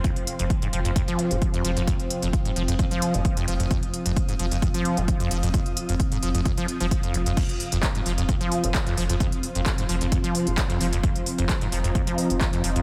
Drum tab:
CC |----------------|----------------|----------------|----------------|
HH |xxxxxxxxxxxxxxxx|xxxxxxxxxxxxxxxx|xxxxxxxxxxxxxxxx|xxxxxxxxxxxxxxxx|
CP |----------------|----------------|----------------|----------------|
BD |o---o---o---o---|o---o---o---o---|o---o---o---o---|o---o---o---o---|

CC |x---------------|----------------|----------------|
HH |xxoxxxoxxxoxxxox|xxoxxxoxxxoxxxox|xxoxxxoxxxoxxxox|
CP |----x-------x---|----x-------x---|----x-------x---|
BD |o---o---o---o---|o---o---o---o---|o---o---o---o---|